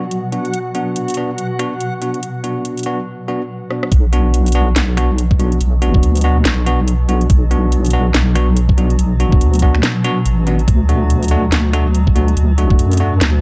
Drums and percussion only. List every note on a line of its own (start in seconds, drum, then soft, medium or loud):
0.11 closed hi-hat medium
0.32 closed hi-hat medium
0.45 closed hi-hat soft
0.54 closed hi-hat medium
0.75 closed hi-hat soft
0.96 closed hi-hat medium
1.08 closed hi-hat soft
1.10 closed hi-hat medium
1.14 closed hi-hat medium
1.38 closed hi-hat medium
1.59 finger snap soft
1.59 closed hi-hat medium
1.80 closed hi-hat medium
2.02 closed hi-hat medium
2.14 closed hi-hat soft
2.23 closed hi-hat medium
2.44 closed hi-hat medium
2.65 closed hi-hat medium
2.77 closed hi-hat soft
2.79 closed hi-hat medium
2.83 closed hi-hat medium
3.71 cross-stick medium
3.83 cross-stick medium
3.92 kick loud
3.92 closed hi-hat medium
4.13 closed hi-hat medium
4.34 closed hi-hat medium
4.46 closed hi-hat soft
4.48 closed hi-hat medium
4.52 closed hi-hat medium
4.76 snare loud
4.76 closed hi-hat medium
4.97 finger snap medium
4.97 closed hi-hat medium
5.18 closed hi-hat medium
5.31 kick loud
5.40 closed hi-hat medium
5.52 closed hi-hat soft
5.61 closed hi-hat medium
5.82 closed hi-hat medium
5.94 kick loud
6.03 closed hi-hat medium
6.15 closed hi-hat medium
6.17 closed hi-hat medium
6.21 closed hi-hat medium
6.45 snare loud
6.45 closed hi-hat medium
6.66 closed hi-hat medium
6.88 closed hi-hat medium
7.09 closed hi-hat medium
7.21 closed hi-hat soft
7.30 kick loud
7.30 closed hi-hat medium
7.51 closed hi-hat medium
7.72 closed hi-hat medium
7.85 closed hi-hat medium
7.86 closed hi-hat medium
7.90 closed hi-hat medium
8.14 snare loud
8.14 closed hi-hat medium
8.35 finger snap medium
8.35 closed hi-hat medium
8.57 closed hi-hat medium
8.69 kick loud
8.78 closed hi-hat medium
8.90 closed hi-hat soft
8.99 closed hi-hat medium
9.20 closed hi-hat medium
9.32 kick loud
9.41 closed hi-hat medium
9.54 closed hi-hat soft
9.55 closed hi-hat medium
9.59 kick medium
9.59 closed hi-hat medium
9.75 finger snap medium
9.83 snare loud
9.83 closed hi-hat medium
10.04 closed hi-hat medium
10.26 closed hi-hat medium
10.47 closed hi-hat medium
10.59 closed hi-hat soft
10.68 kick loud
10.68 closed hi-hat medium
10.89 closed hi-hat medium
11.10 closed hi-hat medium
11.23 closed hi-hat soft
11.24 closed hi-hat medium
11.28 closed hi-hat medium
11.52 snare loud
11.52 closed hi-hat medium
11.73 finger snap medium
11.73 closed hi-hat medium
11.95 closed hi-hat medium
12.07 kick loud
12.16 closed hi-hat medium
12.28 closed hi-hat soft
12.37 closed hi-hat medium
12.58 closed hi-hat medium
12.70 kick loud
12.79 closed hi-hat medium
12.91 closed hi-hat soft
12.93 closed hi-hat medium
12.97 closed hi-hat medium
13.21 snare loud
13.21 closed hi-hat medium